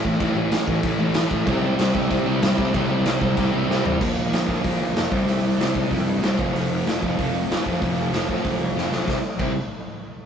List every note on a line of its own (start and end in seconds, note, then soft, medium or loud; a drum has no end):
0.00 0.19 A2 medium
0.00 0.22 E3 medium
0.00 0.21 A3 medium
0.00 0.20 A3 medium
0.04 0.15 A1 medium
0.04 0.19 A2 medium
0.04 0.20 E3 medium
0.04 kick medium
0.20 0.32 A1 loud
0.20 0.35 A2 medium
0.20 0.36 E3 loud
0.20 0.34 A3 loud
0.20 kick loud
0.20 crash medium
0.34 0.46 A1 loud
0.34 0.51 A2 medium
0.34 0.52 E3 loud
0.34 0.52 A3 loud
0.52 0.63 A1 loud
0.52 0.68 A2 medium
0.52 0.68 E3 loud
0.52 0.67 A3 loud
0.52 snare loud
0.52 crash medium
0.68 0.79 A1 medium
0.68 0.83 A2 medium
0.68 0.84 E3 loud
0.68 0.84 A3 loud
0.68 kick medium
0.83 0.95 A1 loud
0.83 0.99 A2 medium
0.83 0.99 E3 loud
0.83 0.98 A3 medium
0.83 kick loud
0.83 crash medium
0.99 1.10 A1 loud
0.99 1.14 A2 medium
0.99 1.15 E3 medium
0.99 1.15 A3 medium
1.14 1.26 A1 medium
1.14 1.30 A2 medium
1.14 1.30 E3 medium
1.14 1.29 A3 loud
1.14 snare loud
1.14 crash medium
1.30 1.42 A1 medium
1.30 1.46 A2 medium
1.30 1.46 E3 loud
1.30 1.46 A3 loud
1.30 kick medium
1.46 1.58 C2 loud
1.46 1.64 C3 loud
1.46 1.64 G3 loud
1.46 1.63 C4 loud
1.46 1.63 E4 loud
1.46 1.62 G4 loud
1.46 kick loud
1.46 crash medium
1.62 1.74 C2 loud
1.62 1.77 C3 medium
1.62 1.78 G3 medium
1.62 1.78 C4 medium
1.62 1.79 E4 medium
1.62 1.79 G4 medium
1.77 1.89 C2 loud
1.77 1.95 C3 medium
1.77 1.95 G3 medium
1.77 1.95 C4 medium
1.77 1.94 E4 medium
1.77 1.93 G4 medium
1.77 snare loud
1.77 crash medium
1.93 2.06 C2 loud
1.93 2.08 C3 medium
1.93 2.09 G3 medium
1.93 2.10 C4 medium
1.93 2.10 E4 medium
1.93 2.11 G4 medium
1.93 kick medium
2.10 2.22 C2 medium
2.10 2.27 C3 medium
2.10 2.26 G3 medium
2.10 2.26 C4 loud
2.10 2.25 E4 loud
2.10 2.24 G4 loud
2.10 kick loud
2.10 crash medium
2.26 2.37 C2 medium
2.26 2.40 C3 medium
2.26 2.41 G3 loud
2.26 2.42 C4 loud
2.26 2.42 E4 loud
2.26 2.42 G4 loud
2.41 2.53 C2 medium
2.41 2.58 C3 medium
2.41 2.58 G3 medium
2.41 2.57 C4 medium
2.41 2.57 E4 loud
2.41 2.56 G4 medium
2.41 snare loud
2.41 crash medium
2.57 2.69 C2 medium
2.57 2.71 C3 medium
2.57 2.72 G3 medium
2.57 2.72 C4 medium
2.57 2.73 E4 medium
2.57 2.73 G4 loud
2.57 kick medium
2.72 2.85 C2 loud
2.72 2.89 C3 loud
2.72 2.89 G3 loud
2.72 2.88 C4 loud
2.72 2.88 E4 loud
2.72 2.87 G4 loud
2.72 kick loud
2.72 crash medium
2.77 3.51 C4 loud
2.88 3.01 C2 loud
2.88 3.03 C3 medium
2.88 3.04 G3 medium
2.88 3.04 C4 medium
2.88 3.05 E4 medium
2.88 3.05 G4 loud
3.05 3.17 C2 loud
3.05 3.20 C3 medium
3.05 3.20 G3 medium
3.05 3.19 C4 medium
3.05 3.19 E4 loud
3.05 3.18 G4 loud
3.05 snare loud
3.05 crash medium
3.19 3.32 C2 loud
3.19 3.34 C3 medium
3.19 3.35 G3 medium
3.19 3.36 C4 medium
3.19 3.36 E4 medium
3.19 3.37 G4 medium
3.19 kick medium
3.36 3.48 C2 loud
3.36 3.53 C3 loud
3.36 3.52 G3 medium
3.36 3.51 C4 medium
3.36 3.51 E4 medium
3.36 3.50 G4 loud
3.36 kick loud
3.36 crash medium
3.51 3.64 C2 loud
3.51 3.65 C3 medium
3.51 3.66 G3 loud
3.51 3.66 C4 loud
3.51 3.67 E4 loud
3.51 3.67 G4 loud
3.67 3.80 C2 medium
3.67 3.84 C3 medium
3.67 3.83 G3 medium
3.67 3.83 C4 loud
3.67 3.82 E4 loud
3.67 3.81 G4 medium
3.71 4.01 C4 loud
3.71 snare medium
3.82 3.96 A1 medium
3.82 3.98 C3 medium
3.82 3.98 G3 medium
3.82 3.99 C4 medium
3.82 3.99 E4 medium
3.82 3.98 G4 loud
3.82 floor tom medium
3.98 4.12 A#1 loud
3.98 4.29 A#2 loud
3.98 4.30 D3 loud
3.98 4.30 F3 medium
3.98 4.31 A#3 loud
3.98 4.31 F4 loud
3.98 kick loud
3.98 crash loud
4.17 4.27 A#1 medium
4.30 4.43 A#1 medium
4.30 4.47 A#2 medium
4.30 4.47 D3 medium
4.30 4.47 F3 medium
4.30 4.46 A#3 medium
4.30 4.45 F4 medium
4.30 snare loud
4.30 open hi-hat soft
4.46 4.59 A#1 medium
4.46 4.61 A#2 medium
4.46 4.61 D3 medium
4.46 4.62 F3 medium
4.46 4.63 A#3 medium
4.46 4.63 F4 medium
4.46 kick medium
4.62 4.75 A#1 medium
4.62 4.93 A#2 medium
4.62 4.93 D3 medium
4.62 4.94 F3 medium
4.62 4.95 A#3 medium
4.62 4.95 F4 loud
4.62 kick medium
4.62 open hi-hat medium
4.80 4.90 A#1 medium
4.94 5.06 F1 medium
4.94 5.09 A#2 medium
4.94 5.10 D3 medium
4.94 5.10 F3 medium
4.94 5.10 A#3 medium
4.94 5.11 F4 medium
4.94 snare loud
4.94 open hi-hat medium
5.11 5.22 C2 medium
5.11 5.27 C3 medium
5.11 5.27 G3 medium
5.11 5.27 C4 medium
5.11 5.26 E4 medium
5.11 kick loud
5.27 5.38 C2 medium
5.27 5.58 C3 medium
5.27 5.58 G3 medium
5.27 5.58 C4 loud
5.27 5.56 E4 loud
5.27 open hi-hat medium
5.44 5.54 C2 medium
5.58 5.79 C2 medium
5.58 5.73 C3 medium
5.58 5.73 G3 medium
5.58 5.75 C4 medium
5.58 5.75 E4 medium
5.58 snare medium
5.58 open hi-hat medium
5.74 5.90 C3 medium
5.74 5.90 G3 medium
5.74 5.90 C4 medium
5.74 5.88 E4 medium
5.74 kick medium
5.89 6.01 F2 medium
5.89 6.22 C3 medium
5.89 6.22 G3 medium
5.89 6.22 C4 medium
5.89 6.20 E4 loud
5.89 kick medium
5.89 open hi-hat medium
6.07 6.17 G2 medium
6.22 6.33 C2 medium
6.22 6.37 C3 medium
6.22 6.37 G3 medium
6.22 6.38 C4 medium
6.22 6.37 E4 medium
6.22 snare loud
6.22 open hi-hat medium
6.37 6.49 F1 medium
6.37 6.55 F2 medium
6.37 6.54 C3 loud
6.37 6.55 F3 medium
6.37 6.54 A3 medium
6.37 6.54 C4 medium
6.37 6.52 F4 medium
6.37 kick medium
6.53 6.65 F1 loud
6.53 6.85 F2 medium
6.53 6.84 C3 medium
6.53 6.86 F3 medium
6.53 6.85 A3 medium
6.53 6.84 C4 loud
6.53 6.83 F4 medium
6.53 open hi-hat medium
6.70 6.80 F1 medium
6.84 6.97 F1 medium
6.84 7.01 F2 medium
6.84 7.00 C3 medium
6.84 7.01 F3 medium
6.84 7.01 A3 medium
6.84 7.01 C4 medium
6.84 7.03 F4 medium
6.84 snare medium
6.84 open hi-hat soft
7.01 7.13 F1 medium
7.01 7.16 F2 medium
7.01 7.16 C3 medium
7.01 7.17 F3 medium
7.01 7.17 A3 medium
7.01 7.17 C4 medium
7.01 7.16 F4 medium
7.01 kick medium
7.17 7.29 F1 medium
7.17 7.48 F2 medium
7.17 7.48 C3 medium
7.17 7.49 F3 medium
7.17 7.49 A3 medium
7.17 7.49 C4 medium
7.17 7.48 F4 medium
7.17 kick medium
7.17 open hi-hat medium
7.34 7.44 F1 medium
7.49 7.61 C2 medium
7.49 7.64 F2 medium
7.49 7.64 C3 medium
7.49 7.63 F3 medium
7.49 7.65 A3 medium
7.49 7.66 C4 medium
7.49 7.65 F4 medium
7.49 snare loud
7.49 open hi-hat medium
7.65 7.77 F1 medium
7.65 7.81 F2 medium
7.65 7.80 C3 medium
7.65 7.81 F3 medium
7.65 7.81 A3 medium
7.65 7.81 C4 medium
7.65 7.79 F4 medium
7.65 kick medium
7.81 7.92 F1 medium
7.81 8.12 F2 medium
7.81 8.12 C3 medium
7.81 8.13 F3 medium
7.81 8.12 A3 medium
7.81 8.11 C4 loud
7.81 8.11 F4 medium
7.81 kick medium
7.81 open hi-hat soft
7.96 8.07 F1 medium
8.12 8.34 F1 medium
8.12 8.27 F2 medium
8.12 8.28 C3 medium
8.12 8.25 F3 medium
8.12 8.27 A3 medium
8.12 8.27 C4 medium
8.12 8.28 F4 medium
8.12 snare medium
8.12 open hi-hat soft
8.27 8.43 F2 medium
8.27 8.43 C3 medium
8.27 8.43 F3 medium
8.27 8.42 A3 medium
8.27 8.42 C4 medium
8.27 8.41 F4 medium
8.27 kick medium
8.42 8.55 A#1 medium
8.42 8.74 F2 medium
8.42 8.74 C3 medium
8.42 8.75 F3 medium
8.42 8.75 A3 medium
8.42 8.74 C4 medium
8.42 8.74 F4 medium
8.42 kick medium
8.42 open hi-hat soft
8.60 8.71 C2 medium
8.75 8.87 F1 medium
8.75 8.89 F2 medium
8.75 8.90 C3 medium
8.75 8.90 F3 medium
8.75 8.91 A3 medium
8.75 8.92 C4 medium
8.75 8.92 F4 medium
8.75 snare medium
8.91 9.03 B1 medium
8.91 9.06 F2 medium
8.91 9.03 C3 medium
8.91 9.07 F3 medium
8.91 9.07 A3 medium
8.91 9.07 C4 medium
8.91 9.08 F4 medium
8.91 snare medium
9.07 9.17 C2 medium
9.07 9.17 C3 medium
9.07 9.17 G3 medium
9.07 9.18 C4 loud
9.07 9.18 E4 medium
9.07 kick medium
9.07 snare medium
9.39 9.55 C2 loud
9.39 9.52 C3 medium
9.39 9.53 G3 medium
9.39 9.53 C4 medium
9.39 9.53 E4 medium
9.39 kick medium
9.39 crash medium